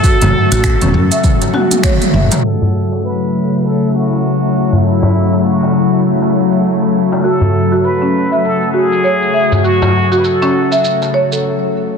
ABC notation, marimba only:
X:1
M:4/4
L:1/16
Q:"Swing 16ths" 1/4=100
K:F#m
V:1 name="Marimba"
F z2 F2 C2 e z2 F z c z e z | z16 | z16 | F z2 F2 C2 e z2 F z c z e z |
F z2 F2 C2 e z2 c A z4 |]